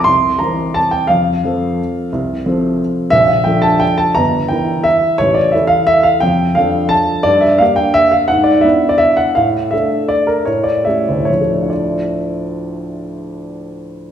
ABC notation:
X:1
M:3/4
L:1/16
Q:1/4=171
K:Dm
V:1 name="Upright piano"
c'4 b4 a2 g2 | f12- | f12 | e2 f2 g2 a2 g2 a2 |
b4 g4 e4 | ^c2 d2 e2 f2 e2 f2 | g4 f4 a4 | d2 e2 f2 g2 e2 f2 |
^f2 d2 e3 d e2 f2 | f4 e4 d2 B2 | ^c2 d2 e4 c4 | [D,,A,,F,A,DFd]12- |
[D,,A,,F,A,DFd]12 |]
V:2 name="Upright piano"
C,,4 [E,CB]8 | F,,4 [F,CA]8 | C,,4 [F,CA]8 | B,,,4 [F,DA]8 |
G,,,4 [E,EB]8 | A,,,4 [E,EA]8 | F,,4 [F,DA]8 | G,,4 [B,DG]8 |
^G,,4 [=B,DE]8 | A,,4 [A,DA]8 | A,,4 [A,^CG]8 | z12 |
z12 |]